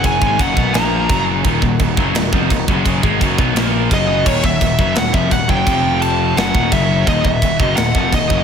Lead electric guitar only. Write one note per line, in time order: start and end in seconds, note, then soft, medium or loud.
0.06 0.40 G#5 loud
0.41 0.76 F#5 loud
0.73 1.23 A#5 loud
3.94 4.27 D#5 medium
4.27 4.43 C#5 medium
4.46 4.94 E5 loud
4.98 5.14 F#5 loud
5.14 5.32 E5 medium
5.32 5.49 F#5 loud
5.50 5.98 G5 loud
6.02 6.38 A5 loud
6.37 6.72 F#5 loud
6.73 7.05 E5 loud
7.08 7.25 D#5 loud
7.26 7.61 E5 loud
7.61 7.75 D#5 loud
7.76 8.13 F#5 loud
8.14 8.44 D#5 medium